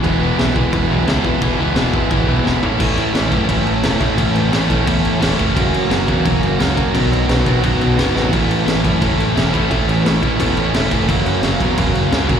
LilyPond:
<<
  \new Staff \with { instrumentName = "Overdriven electric guitar" } { \time 4/4 \key a \lydian \tempo 4 = 174 <e gis b e'>8 <e gis b e'>8 <e gis b e'>8 <e gis b e'>8 <e gis b e'>8 <e gis b e'>8 <e gis b e'>8 <e gis b e'>8 | <e gis b e'>8 <e gis b e'>8 <e gis b e'>8 <e gis b e'>8 <e gis b e'>8 <e gis b e'>8 <e gis b e'>8 <a, e a cis' e'>8 | <a, e a cis' e'>4 <a, e a cis' e'>8 <a, e a cis' e'>8 <a, e a cis' e'>4 <a, e a cis' e'>8 <a, e a cis' e'>8 | <a, e a cis' e'>4 <a, e a cis' e'>8 <a, e a cis' e'>8 <a, e a cis' e'>4 <a, e a cis' e'>8 <a, e a cis' e'>8 |
<fis ais cis' fis'>4 <fis ais cis' fis'>8 <fis ais cis' fis'>8 <fis ais cis' fis'>4 <fis ais cis' fis'>8 <fis ais cis' fis'>8 | <b, dis fis b fis'>4 <b, dis fis b fis'>8 <b, dis fis b fis'>8 <b, dis fis b fis'>4 <b, dis fis b fis'>8 <b, dis fis b fis'>8 | <a, e a cis' e'>4 <a, e a cis' e'>8 <a, e a cis' e'>8 <a, e a cis' e'>4 <a, e a cis' e'>8 <a, e a cis' e'>8 | <a, e a cis' e'>4 <a, e a cis' e'>8 <a, e a cis' e'>8 <a, e a cis' e'>4 <a, e a cis' e'>8 <a, e a cis' e'>8 |
<fis, cis fis ais cis'>4 <fis, cis fis ais cis'>8 <fis, cis fis ais cis'>8 <fis, cis fis ais cis'>4 <fis, cis fis ais cis'>8 <fis, cis fis ais cis'>8 | }
  \new Staff \with { instrumentName = "Overdriven electric guitar" } { \clef bass \time 4/4 \key a \lydian <e, b, e>8 <e, b, e>8 <e, b, e>8 <e, b, e>8 <e, b, e>8 <e, b, e>8 <e, b, e>8 <e, b, e>8 | <e, b, e>8 <e, b, e>8 <e, b, e>8 <e, b, e>8 <e, b, e>8 <e, b, e>8 <e, b, e>8 <a, e a>8 | <a, e a>4 <a, e a>8 <a, e a>8 <a, e a>4 <a, e a>8 <a, e a>8 | <a, e a>4 <a, e a>8 <a, e a>8 <a, e a>4 <a, e a>8 <a, e a>8 |
<fis, cis fis>4 <fis, cis fis>8 <fis, cis fis>8 <fis, cis fis>4 <fis, cis fis>8 <fis, cis fis>8 | <b, fis b>4 <b, fis b>8 <b, fis b>8 <b, fis b>4 <b, fis b>8 <b, fis b>8 | <a, e a>4 <a, e a>8 <a, e a>8 <a, e a>4 <a, e a>8 <a, e a>8 | <a, e a>4 <a, e a>8 <a, e a>8 <a, e a>4 <a, e a>8 <a, e a>8 |
<fis, cis fis>4 <fis, cis fis>8 <fis, cis fis>8 <fis, cis fis>4 <fis, cis fis>8 <fis, cis fis>8 | }
  \new Staff \with { instrumentName = "Picked electric bass" } { \clef bass \time 4/4 \key a \lydian e,,8 e,,8 b,,8 e,,8 e,,8 b,,8 cis,8 e,8 | e,,8 cis,8 e,,8 gis,,8 gis,,8 b,,8 e,,8 a,,8 | a,,8 a,8 a,,8 fis,8 fis,,8 a,,8 e,,8 a,8 | a,,8 a,,8 a,,8 a,,8 e,8 a,,8 e,,8 fis,,8 |
fis,,8 fis,8 fis,,8 e,8 e,,8 fis,,8 cis,8 fis,8 | b,,8 b,,8 b,,8 b,,8 fis,8 b,,8 fis,,8 a,,8 | a,,8 a,8 a,,8 fis,8 fis,,8 a,,8 e,,8 a,8 | a,,8 a,,8 a,,8 a,,8 e,8 a,,8 e,,8 fis,,8 |
fis,,8 fis,8 fis,,8 e,8 e,,8 fis,,8 cis,8 ais,,8 | }
  \new DrumStaff \with { instrumentName = "Drums" } \drummode { \time 4/4 <cymc bd>4 <cymc sn>8 bd8 <cymc bd>4 <cymc sn>8 bd8 | <cymc bd>4 <cymc sn>8 bd8 <cymc bd>4 sn8 tomfh8 | <cymc bd>8 cymc8 <cymc sn>8 <cymc bd>8 <cymc bd>8 cymc8 <cymc sn>8 <cymc bd>8 | <cymc bd>8 cymc8 <cymc sn>8 <cymc bd>8 <cymc bd>8 cymc8 <cymc sn>8 <cymc bd>8 |
<cymc bd>8 cymc8 <cymc sn>8 <cymc bd>8 <cymc bd>8 cymc8 <cymc sn>8 <cymc bd>8 | <cymc bd>8 cymc8 <cymc sn>8 <cymc bd>8 <cymc bd>8 cymc8 <cymc sn>8 sn8 | <cymc bd>8 cymc8 <cymc sn>8 <cymc bd>8 <cymc bd>8 cymc8 <cymc sn>8 <cymc bd>8 | <cymc bd>8 cymc8 <cymc sn>8 <cymc bd>8 <cymc bd>8 cymc8 <cymc sn>8 <cymc bd>8 |
<cymc bd>8 cymc8 <cymc sn>8 <cymc bd>8 <cymc bd>8 cymc8 <cymc sn>8 <cymc bd>8 | }
>>